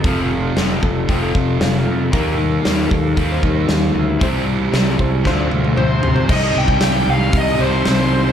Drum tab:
CC |----------------|----------------|----------------|x---------------|
HH |o---o---o---o---|o---o---o---o---|o---o-----------|----o---o---o---|
SD |----o-------o---|----o-------o---|----o---o-------|----o-------o---|
T1 |----------------|----------------|----------oo----|----------------|
T2 |----------------|----------------|------------o---|----------------|
FT |----------------|----------------|--------------oo|----------------|
BD |o-----o-o-o-----|o-----o-o-o-----|o-----o-o-------|o--o----o-------|